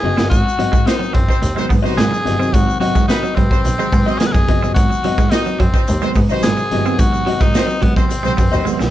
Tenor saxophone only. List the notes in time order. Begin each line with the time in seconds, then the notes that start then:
Already playing: G#4
0.30 F#4
0.87 D#4
1.14 C4
1.97 G#4
2.53 F#4
2.80 F#4
3.08 D#4
3.35 C4
4.18 G#4
4.27 B4
4.32 G#4
4.74 F#4
5.31 D#4
5.60 C4
6.43 G#4
6.99 F#4
7.42 D#4
7.83 B3
7.96 C4